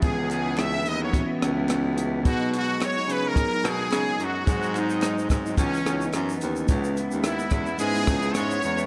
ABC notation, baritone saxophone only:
X:1
M:4/4
L:1/16
Q:"Swing 16ths" 1/4=108
K:C#m
V:1 name="Baritone saxophone" clef=bass
C,,6 D,,3 z C,,6 | B,,4 z2 C,3 z B,,2 C,2 F,,2 | G,,6 G,,2 C,,2 C,,2 F,,2 D,,2 | C,,3 D,,3 E,,2 G,,2 C,,2 G,,2 E,,2 |]